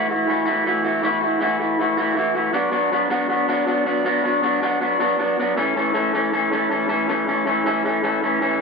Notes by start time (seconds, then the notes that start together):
Already playing: E3 A3
0.09 A3 E4 F#4
0.27 E3 A3 E4 F#4
0.46 E3 A3 E4 F#4
0.65 E3 A3 E4 F#4
0.84 A3 E4 F#4
1.02 E3 A3 E4 F#4
1.21 A3 E4 F#4
1.40 E3 A3 E4 F#4
1.59 A3 E4 F#4
1.79 E3 A3 E4 F#4
1.97 E3 A3 E4 F#4
2.15 E3 A3 E4 F#4
2.35 A3 E4 F#4
2.53 F#3 B3 D4 F#4
2.71 F#3 B3 D4 F#4
2.92 F#3 B3 D4 F#4
3.10 F#3 B3 D4 F#4
3.28 F#3 B3 D4 F#4
3.48 F#3 B3 D4 F#4
3.66 F#3 B3 D4 F#4
3.85 F#3 B3 D4 F#4
4.04 F#3 B3 D4 F#4
4.23 F#3 B3 D4 F#4
4.42 F#3 B3 D4 F#4
4.62 F#3 B3 D4 F#4
4.80 F#3 B3 D4 F#4
4.99 F#3 B3 D4 F#4
5.18 F#3 B3 D4 F#4
5.39 F#3 B3 D4 F#4
5.56 E3 A3 C#4 A4
5.75 E3 A3 C#4 A4
5.94 E3 A3 C#4 A4
6.13 E3 A3 C#4 A4
6.32 E3 A3 C#4 A4
6.51 E3 A3 C#4 A4
6.70 E3 A3 C#4 A4
6.88 E3 A3 C#4 A4
7.08 E3 A3 C#4 A4
7.27 E3 A3 C#4 A4
7.46 E3 A3 C#4 A4
7.66 E3 A3 C#4 A4
7.84 E3 A3 C#4 A4
8.03 E3 A3 C#4 A4
8.22 E3 A3 C#4 A4
8.41 E3 A3 C#4 A4